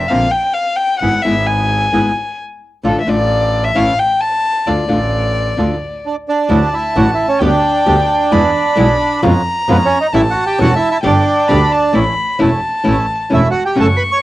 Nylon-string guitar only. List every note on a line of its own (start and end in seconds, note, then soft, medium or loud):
0.10 0.27 D3 medium
0.10 0.27 A#3 medium
0.10 0.27 C4 medium
0.10 0.27 F4 medium
1.02 1.18 G#3 soft
1.02 1.19 B3 medium
1.02 1.19 E4 medium
1.25 1.33 G#3 medium
1.25 1.33 B3 medium
1.25 1.33 E4 loud
1.92 2.09 G#3 medium
1.92 2.10 B3 medium
1.92 2.10 E4 medium
2.83 3.00 D3 medium
2.83 3.01 A3 medium
2.83 3.01 D4 medium
2.83 3.01 F4 medium
3.07 3.15 D3 medium
3.07 3.16 A3 medium
3.07 3.16 D4 medium
3.07 3.16 F4 medium
3.75 3.91 E3 medium
3.75 3.92 A3 medium
3.75 3.92 C#4 medium
3.75 3.92 E4 medium
4.67 4.83 D3 medium
4.67 4.83 A3 medium
4.67 4.83 D4 medium
4.67 4.83 F4 medium
4.88 4.97 D3 medium
4.88 4.97 A3 medium
4.88 4.97 D4 medium
4.88 4.97 F4 medium
5.57 5.74 D3 medium
5.57 5.74 A3 medium
5.57 5.74 D4 medium
5.57 5.74 F4 medium
6.49 6.58 D3 medium
6.49 6.58 F#3 medium
6.49 6.58 A3 medium
6.49 6.58 D4 medium
6.49 6.58 E4 medium
6.96 7.04 D3 medium
6.96 7.04 F#3 medium
6.96 7.04 A3 medium
6.96 7.04 D4 medium
6.96 7.05 E4 medium
7.41 7.49 D3 medium
7.41 7.50 G3 medium
7.41 7.50 B3 loud
7.41 7.50 G4 loud
7.86 7.95 D3 medium
7.86 7.95 G3 medium
7.86 7.95 B3 medium
7.86 7.95 G4 medium
8.31 8.40 B2 medium
8.31 8.41 E3 medium
8.31 8.41 G#3 loud
8.31 8.41 B3 medium
8.31 8.41 E4 medium
8.76 8.85 B2 medium
8.76 8.86 E3 medium
8.76 8.86 G#3 medium
8.76 8.86 B3 medium
8.76 8.86 E4 medium
9.23 9.32 B2 loud
9.23 9.32 F3 medium
9.23 9.32 G#3 loud
9.23 9.32 C#4 medium
9.23 9.32 F4 loud
9.68 9.77 B2 medium
9.68 9.77 F3 medium
9.68 9.77 G#3 medium
9.68 9.77 C#4 medium
9.68 9.77 F4 medium
10.13 10.22 E3 medium
10.13 10.23 G3 medium
10.13 10.23 C#4 medium
10.13 10.23 E4 loud
10.59 10.68 E3 medium
10.59 10.68 G3 medium
10.59 10.68 C#4 medium
10.59 10.68 E4 loud
11.03 11.13 D3 loud
11.03 11.12 G3 loud
11.03 11.13 D4 loud
11.03 11.13 G4 loud
11.49 11.58 D3 medium
11.49 11.58 G3 medium
11.49 11.58 D4 medium
11.49 11.58 G4 loud
11.93 12.03 E3 medium
11.93 12.03 A3 medium
11.93 12.03 C#4 medium
11.93 12.03 E4 medium
12.39 12.49 E3 medium
12.39 12.49 A3 medium
12.39 12.49 C#4 medium
12.39 12.49 E4 loud
12.84 12.94 E3 medium
12.84 12.94 A3 loud
12.84 12.94 C#4 medium
12.84 12.94 E4 loud
13.30 13.40 E3 medium
13.30 13.40 A3 medium
13.30 13.40 C#4 medium
13.30 13.40 E4 medium
13.75 13.86 C#3 medium
13.75 13.86 F#3 medium
13.75 13.86 A3 medium
13.75 13.86 C#4 medium
13.75 13.86 F#4 medium